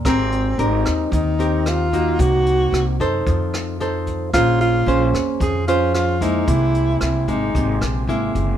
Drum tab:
HH |xxxxxxxx|xxxxxxxx|xxxxxxxx|xxxxxxxx|
SD |r--r--r-|--r--r--|r--r--r-|--r--r--|
BD |o--oo--o|o--oo--o|o--oo--o|o--oo--o|